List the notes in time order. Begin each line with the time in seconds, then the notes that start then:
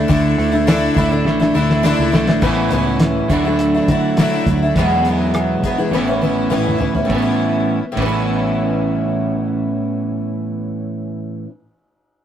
Already playing: A3 D4 E4
0.08 D2 D3 A3 D4 E4, kick, open hi-hat
0.38 D2 A3, open hi-hat
0.52 A3 D4 E4
0.67 D3 A3 D4 E4, snare, open hi-hat
0.95 D2 D3 A3 D4 E4, kick, open hi-hat
1.09 A3 D4 E4
1.25 A1 A3, snare
1.40 A3 D4 E4, snare
1.54 D2 D3 A3 D4 E4
1.70 snare
1.83 D3 A3 D4 E4, snare
1.99 C#2
2.12 B1 D3 A3 D4 E4, snare
2.27 A1 A3 D4 E4, snare
2.42 A1 A2 E3 B3 C#4 E4, kick, crash
2.70 C#2 E3 B3 C#4 E4, closed hi-hat
3.00 snare, closed hi-hat
3.28 D2 D3 F#3 A3 D4, kick, closed hi-hat
3.33 E4
3.45 A3 D4 E4
3.59 closed hi-hat
3.74 A3 D4 E4
3.88 D3 F#3 A3 D4 E4, kick, closed hi-hat
4.17 D3 F#3 A3 D4, snare, closed hi-hat
4.21 E4
4.46 D2 F#3 A3 D4, kick, closed hi-hat
4.51 E4
4.62 A3 D4 E4
4.75 E2 B2 F#3 G#3 B3, kick, closed hi-hat
4.80 E4
5.05 F#3 G#3 B3, closed hi-hat
5.10 E4
5.34 cross-stick, closed hi-hat
5.63 E3 F#3 G#3 B3 E4, kick, closed hi-hat
5.78 F#3 G#3 B3 E4
5.91 A1 A2 E3 B3 C#4, snare
5.95 E4
6.07 B3 C#4 E4
6.21 E3 B3 C#4 E4, high tom
6.50 A2 E3 B3 C#4 E4, mid tom
6.67 mid tom
6.78 E3 B3 C#4 E4, floor tom
6.94 B3 C#4 E4, floor tom
7.05 A2
7.09 A1 E3 B3 C#4 E4, kick, ride
7.14 B3 C#4
7.22 E4
7.92 A2
7.97 A1 E3 C#4 E4, kick, ride
8.02 B3 C#4
8.09 E4